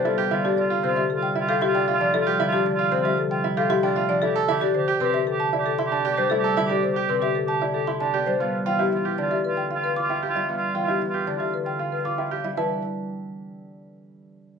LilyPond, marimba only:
\new Staff \with { instrumentName = "Marimba" } { \time 4/4 \key a \minor \tempo 4 = 115 a'16 r16 f''16 g'16 d''16 r16 c''16 g'16 a'16 r16 e''16 a'16 g'16 r16 e''16 d''16 | a'16 r16 f''16 g'16 d''16 r16 c''16 g'16 a'16 r16 e''16 a'16 g'16 r16 e''16 d''16 | a'16 r16 e''16 g'16 c''16 r16 b'16 g'16 a'16 r16 d''16 a'16 r8 d''16 c''16 | a'16 r16 e''16 g'16 c''16 r16 b'16 g'16 a'16 r16 d''16 a'16 r8 d''16 c''16 |
r8 g''16 g'16 e''16 r16 d''16 g'16 b'16 r16 f''16 b'16 r8 f''16 e''16 | r8 g''16 g'16 e''16 r16 d''16 g'16 b'16 r16 f''16 b'16 r8 f''16 e''16 | b'8 r2. r8 | }